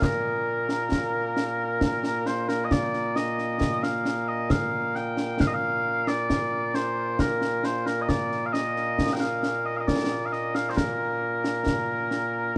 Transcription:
0.00 12.56 A#2 medium
0.00 12.56 A#3 medium
0.00 2.27 A#4 medium
0.00 concert bass drum medium
0.00 snare medium
0.69 snare medium
0.92 concert bass drum soft
0.92 snare medium
1.37 snare medium
1.81 concert bass drum medium
1.81 snare loud
2.04 snare medium
2.26 2.48 C5 medium
2.26 snare medium
2.48 2.65 A#4 medium
2.48 snare medium
2.65 2.71 D#5 medium
2.71 3.16 D5 medium
2.71 concert bass drum medium
2.71 snare medium
2.94 snare soft
3.16 3.83 D#5 medium
3.16 snare medium
3.38 snare soft
3.61 concert bass drum medium
3.61 snare medium
3.83 4.28 F5 medium
3.83 snare medium
4.05 snare medium
4.28 4.51 D#5 medium
4.50 4.96 F5 medium
4.50 concert bass drum medium
4.50 snare loud
4.95 5.41 G5 loud
4.95 snare soft
5.17 snare medium
5.40 5.47 F5 loud
5.40 concert bass drum medium
5.40 snare loud
5.47 5.54 D#5 medium
5.54 6.08 F5 loud
6.07 6.75 D5 loud
6.07 snare medium
6.30 concert bass drum soft
6.30 snare medium
6.74 7.20 C5 medium
6.74 snare medium
7.19 7.65 A#4 medium
7.19 concert bass drum medium
7.19 snare medium
7.42 snare medium
7.64 7.86 C5 medium
7.64 snare medium
7.86 8.02 A#4 medium
7.86 snare medium
8.02 8.08 D#5 medium
8.08 8.46 D5 medium
8.08 concert bass drum medium
8.08 snare medium
8.32 snare soft
8.46 8.53 F5 medium
8.53 9.13 D#5 loud
8.53 snare medium
8.76 snare soft
8.99 concert bass drum soft
8.99 snare medium
9.13 9.20 G5 medium
9.20 9.66 F5 medium
9.20 snare medium
9.43 snare medium
9.66 9.77 D#5 medium
9.77 9.87 D#5 medium
9.77 9.81 F5 medium
9.87 10.26 D5 medium
9.87 concert bass drum medium
9.87 snare medium
10.26 10.33 F5 medium
10.33 10.55 D#5 medium
10.33 snare soft
10.55 10.70 F5 medium
10.55 snare medium
10.70 10.77 C5 medium
10.77 12.56 A#4 medium
10.77 concert bass drum medium
10.77 snare medium
11.44 snare medium
11.66 concert bass drum soft
11.66 snare medium
12.11 snare medium

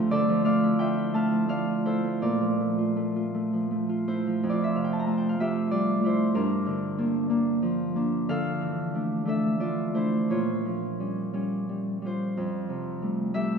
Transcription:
0.00 0.14 G2 medium
0.00 0.28 F3 medium
0.00 0.44 A3 medium
0.00 2.24 C4 medium
0.00 1.61 D4 medium
0.00 0.78 F4 medium
0.00 0.11 A4 medium
0.00 1.84 C5 medium
0.00 0.10 D5 medium
0.00 0.79 E5 medium
0.00 0.44 F5 medium
0.00 0.14 G5 medium
0.00 1.13 A5 loud
0.00 0.14 A#5 loud
0.11 2.23 D3 medium
0.11 1.86 A4 medium
0.11 0.45 D5 loud
0.29 1.30 F3 medium
0.45 1.13 A3 medium
0.45 1.49 D5 medium
0.45 1.14 F5 medium
0.63 0.97 E4 medium
0.79 1.66 F4 medium
0.79 2.24 E5 medium
0.79 1.38 G5 medium
0.98 1.84 E4 medium
1.14 1.47 A3 medium
1.14 1.48 F5 medium
1.14 4.92 A5 loud
1.32 2.40 F3 soft
1.48 2.03 A3 medium
1.48 2.21 D5 medium
1.48 4.75 F5 medium
1.67 2.77 F4 soft
1.85 2.24 E4 medium
1.85 5.77 A4 medium
1.85 2.24 C5 medium
2.04 2.59 A3 soft
2.22 4.44 A#2 medium
2.22 4.45 A#4 medium
2.22 4.44 D5 medium
2.41 3.52 F3 soft
2.60 2.95 A3 soft
2.78 3.15 F4 medium
2.96 3.33 A3 soft
3.16 3.88 F4 medium
3.34 3.70 A3 medium
3.53 4.26 F3 soft
3.71 4.07 A3 soft
3.89 4.50 F4 soft
4.08 5.05 A3 soft
4.08 4.49 E4 soft
4.08 6.02 C5 medium
4.27 7.61 F3 medium
4.43 6.39 F2 medium
4.49 5.06 F4 medium
4.49 4.75 D5 medium
4.64 4.83 E5 medium
4.75 6.38 C3 soft
4.75 4.92 F5 medium
4.84 4.98 G5 medium
4.93 5.06 A5 medium
4.99 5.14 A#5 medium
5.06 5.39 A3 soft
5.06 5.39 F4 soft
5.06 5.24 A5 medium
5.18 5.36 G5 medium
5.29 5.48 F5 medium
5.40 6.00 A3 medium
5.40 5.71 F4 medium
5.40 8.33 G4 medium
5.40 5.94 E5 medium
5.71 8.32 G3 medium
5.71 6.03 F4 medium
5.71 6.25 D5 medium
6.01 6.37 A3 medium
6.01 9.60 F4 medium
6.05 6.38 E4 medium
6.05 6.38 C5 medium
6.35 8.32 G2 medium
6.35 6.97 D4 medium
6.35 8.32 A#4 medium
6.66 8.28 D3 medium
6.98 7.28 A#3 soft
6.98 7.29 D4 medium
7.30 7.94 A#3 medium
7.30 7.95 D4 medium
7.62 10.64 F3 medium
7.96 8.32 A#3 medium
7.96 8.94 D4 medium
8.29 10.34 D3 medium
8.29 9.27 A4 medium
8.29 12.19 F5 loud
8.61 10.33 E3 soft
8.95 9.25 A3 soft
8.95 9.26 D4 soft
9.25 9.59 A3 medium
9.25 9.94 D4 medium
9.25 10.34 A4 medium
9.25 10.34 E5 medium
9.60 9.93 A3 soft
9.60 10.30 F4 medium
9.60 10.34 D5 medium
9.94 10.33 A3 soft
9.94 10.34 D4 soft
9.94 10.34 E4 medium
9.94 10.55 C5 medium
10.30 12.39 A#2 medium
10.30 12.04 F4 medium
10.30 12.39 C#5 medium
10.65 13.59 F3 soft
11.00 11.32 G3 soft
11.00 11.33 C#4 soft
11.33 11.68 G3 soft
11.33 12.03 C#4 soft
11.69 12.01 G3 soft
12.02 13.01 G3 soft
12.02 12.40 C#4 soft
12.02 13.59 F4 soft
12.06 13.59 C5 medium
12.37 13.59 F2 medium
12.69 13.59 C3 soft
13.02 13.33 G3 soft
13.02 13.34 A3 soft
13.34 13.59 G3 soft
13.34 13.59 A3 medium
13.34 13.59 G4 medium
13.34 13.59 E5 medium

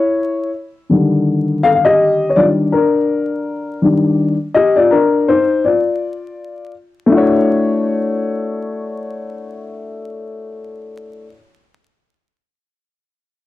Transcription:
0.00 0.50 E4 medium
0.00 0.48 C#5 medium
0.89 3.79 D3 medium
0.89 2.35 D#3 medium
0.89 2.35 G3 soft
1.63 1.69 A4 medium
1.63 1.68 F5 medium
1.75 1.84 F5 medium
1.85 2.28 G4 medium
1.85 2.32 D#5 medium
2.29 2.36 C#5 medium
2.36 2.69 D#3 soft
2.36 2.69 G3 soft
2.36 2.70 D4 medium
2.36 2.45 F4 medium
2.36 2.44 D5 medium
2.72 3.79 D4 medium
2.72 3.78 A#4 medium
3.82 4.33 D#3 medium
3.82 4.33 G3 soft
3.82 4.34 D4 medium
4.54 4.76 G4 medium
4.54 4.77 D#5 medium
4.76 4.91 F4 medium
4.76 4.92 D5 medium
4.91 5.26 D4 medium
4.91 5.29 A#4 medium
5.28 5.63 D#4 medium
5.28 5.66 C5 medium
5.64 6.71 F4 medium
5.64 6.71 D5 medium
7.06 11.25 A3 medium
7.06 11.28 D4 medium
7.11 11.30 E4 medium
7.11 11.33 F#4 medium
7.17 11.36 C#5 medium

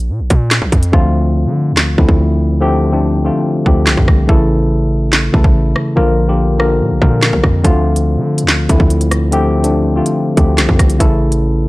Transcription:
0.00 0.11 A#1 loud
0.09 0.21 A#2 loud
0.20 0.30 A#1 loud
0.30 0.61 A#2 loud
0.30 kick loud
0.30 closed hi-hat medium
0.51 snare loud
0.51 clap medium
0.51 closed hi-hat medium
0.62 0.72 A#1 loud
0.62 kick medium
0.72 0.92 F2 loud
0.72 kick loud
0.72 closed hi-hat medium
0.83 closed hi-hat medium
0.92 1.47 D2 loud
0.92 1.48 D3 loud
0.92 1.48 F3 medium
0.92 1.48 A3 medium
0.92 1.48 C4 medium
0.92 1.49 F4 loud
0.92 kick loud
1.46 1.73 D3 loud
1.72 1.97 D2 loud
1.77 snare loud
1.77 clap medium
1.98 2.08 D2 loud
1.98 2.39 D3 medium
1.98 2.40 F3 medium
1.98 2.40 A3 medium
1.98 2.40 C4 medium
1.98 2.40 E4 medium
1.98 kick loud
2.09 3.30 D2 loud
2.09 kick loud
2.60 2.81 D3 loud
2.60 2.81 F3 medium
2.60 2.82 A3 medium
2.60 2.82 C4 loud
2.60 2.82 G4 loud
2.91 3.13 D3 medium
2.91 3.13 F3 medium
2.91 3.13 A3 medium
2.91 3.13 C4 medium
2.91 3.13 D4 medium
3.24 3.52 D3 medium
3.24 3.52 F3 medium
3.24 3.52 A3 medium
3.24 3.52 C4 medium
3.24 3.52 F4 medium
3.65 3.89 D2 loud
3.65 4.07 D3 medium
3.65 4.07 F3 medium
3.65 4.07 A3 medium
3.65 4.07 C4 medium
3.65 4.07 G4 medium
3.65 kick loud
3.87 3.97 C2 loud
3.87 snare loud
3.87 clap medium
3.97 4.07 F2 loud
3.97 kick medium
4.08 4.28 C2 loud
4.08 kick loud
4.08 cross-stick medium
4.27 5.30 A1 loud
4.27 4.83 C#3 loud
4.27 4.83 E3 medium
4.27 4.84 A3 medium
4.27 4.84 E4 medium
4.27 4.84 A4 loud
4.27 kick loud
5.13 snare loud
5.13 clap medium
5.32 5.44 C#2 loud
5.32 5.74 C#3 medium
5.32 5.74 E3 medium
5.32 5.75 A3 medium
5.32 5.75 E4 medium
5.32 5.75 A4 medium
5.32 kick loud
5.44 5.75 A1 loud
5.44 kick loud
5.76 cross-stick medium
5.95 6.82 A#1 loud
5.95 6.17 D3 loud
5.95 6.17 F3 loud
5.95 6.17 A#3 medium
5.95 6.17 F4 medium
5.95 6.18 A#4 loud
6.27 6.48 D3 medium
6.27 6.49 F3 medium
6.27 6.49 A#3 medium
6.27 6.49 F4 medium
6.27 6.49 G4 medium
6.58 6.87 D3 medium
6.58 6.87 F3 medium
6.58 6.87 A#3 medium
6.58 6.87 F4 medium
6.58 6.87 A#4 medium
6.58 cross-stick medium
6.81 6.93 A#2 loud
6.91 7.01 A#1 loud
7.01 7.32 A#2 loud
7.01 7.42 D3 medium
7.01 7.43 F3 medium
7.01 7.43 A#3 medium
7.01 7.43 F4 medium
7.01 7.43 A#4 medium
7.01 kick loud
7.22 snare loud
7.22 clap medium
7.33 7.43 A#1 loud
7.33 kick medium
7.44 7.64 F2 loud
7.44 kick loud
7.44 cross-stick medium
7.64 8.18 D2 loud
7.64 8.19 D3 loud
7.64 8.19 F3 medium
7.64 8.19 A3 loud
7.64 8.20 C4 medium
7.64 8.20 F4 loud
7.64 kick loud
7.64 closed hi-hat medium
7.96 closed hi-hat medium
8.17 8.45 D3 loud
8.38 closed hi-hat medium
8.43 8.68 D2 loud
8.48 snare loud
8.48 clap medium
8.69 8.79 D2 loud
8.69 9.11 D3 medium
8.69 9.11 F3 medium
8.69 9.11 A3 medium
8.69 9.11 C4 medium
8.69 9.12 E4 medium
8.69 kick loud
8.69 closed hi-hat medium
8.80 10.02 D2 loud
8.80 kick loud
8.90 closed hi-hat medium
9.01 closed hi-hat medium
9.11 cross-stick medium
9.11 closed hi-hat medium
9.31 9.52 D3 medium
9.31 9.53 F3 medium
9.31 9.53 A3 medium
9.31 9.53 C4 loud
9.31 9.53 G4 loud
9.31 closed hi-hat medium
9.62 9.84 D3 medium
9.62 9.84 F3 medium
9.62 9.84 A3 medium
9.62 9.84 C4 medium
9.62 9.85 D4 medium
9.62 closed hi-hat medium
9.95 10.23 D3 medium
9.95 10.23 F3 medium
9.95 10.23 A3 medium
9.95 10.23 C4 medium
9.95 10.24 F4 medium
10.06 closed hi-hat medium
10.36 10.60 D2 loud
10.36 10.78 D3 medium
10.36 10.78 F3 medium
10.36 10.78 A3 medium
10.36 10.79 C4 medium
10.36 10.79 G4 medium
10.36 kick loud
10.36 closed hi-hat medium
10.58 10.68 C2 medium
10.58 snare loud
10.58 clap medium
10.58 closed hi-hat medium
10.69 10.79 F2 loud
10.69 kick medium
10.79 10.99 C2 loud
10.79 kick loud
10.79 cross-stick medium
10.79 closed hi-hat medium
10.90 closed hi-hat medium
10.99 11.68 A1 loud
10.99 11.54 C#3 loud
10.99 11.55 E3 medium
10.99 11.55 A3 medium
10.99 11.55 E4 medium
10.99 11.55 A4 loud
10.99 kick loud
10.99 closed hi-hat medium
11.32 closed hi-hat medium

